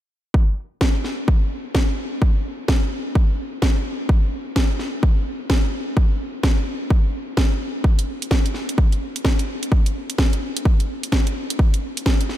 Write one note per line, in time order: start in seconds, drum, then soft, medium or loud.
0.34 kick loud
0.81 kick medium
0.81 snare loud
1.04 snare soft
1.28 kick loud
1.75 kick medium
1.75 snare loud
2.22 kick loud
2.68 kick loud
2.68 snare loud
3.15 kick loud
3.62 kick loud
3.62 snare loud
4.09 kick loud
4.56 kick loud
4.56 snare loud
4.79 snare soft
5.03 kick loud
5.50 kick loud
5.50 snare loud
5.97 kick loud
6.43 kick loud
6.43 snare loud
6.90 kick loud
7.37 kick loud
7.37 snare loud
7.84 kick loud
7.99 closed hi-hat soft
8.22 closed hi-hat medium
8.31 kick medium
8.31 snare loud
8.46 closed hi-hat soft
8.54 snare soft
8.69 closed hi-hat medium
8.78 kick loud
8.92 closed hi-hat soft
9.16 closed hi-hat medium
9.25 kick loud
9.25 snare loud
9.39 closed hi-hat soft
9.63 closed hi-hat medium
9.72 kick loud
9.86 closed hi-hat soft
10.10 closed hi-hat medium
10.18 kick medium
10.18 snare loud
10.33 closed hi-hat soft
10.57 closed hi-hat medium
10.65 kick loud
10.80 closed hi-hat soft
11.03 closed hi-hat medium
11.12 kick medium
11.12 snare loud
11.27 closed hi-hat soft
11.50 closed hi-hat medium
11.59 kick loud
11.74 closed hi-hat soft
11.97 closed hi-hat medium
12.06 kick medium
12.06 snare loud
12.21 closed hi-hat soft
12.29 snare soft